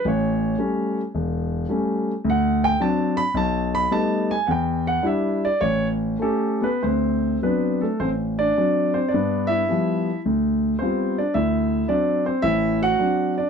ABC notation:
X:1
M:4/4
L:1/8
Q:"Swing" 1/4=108
K:Dmix
V:1 name="Grand piano"
^c3 z4 z | f g a b a b a ^g | [fg] f e d ^c z [A,A] [B,B] | [Cc]2 [B,B] [A,A] [Cc] [Dd]2 [Cc] |
[Dd] [Ee]3 z2 [Cc] [Dd] | [Ee]2 [Dd] [Cc] [Ee] [Ff]2 [Dd] |]
V:2 name="Grand piano" clef=bass
A,,,2 [G,A,^C] z E,,,2 [G,A,C] z | D,,2 [F,CD] z B,,,2 [G,A,B,^D] z | E,,2 [G,DE] z A,,,2 [^CG] z | D,,2 [F,CD] z A,,,2 [F,CD] z |
[G,,B,]2 [=F,G,B,] z D,,2 [G,B,=F] z | D,,2 [F,C] z A,,,2 [F,CD] z |]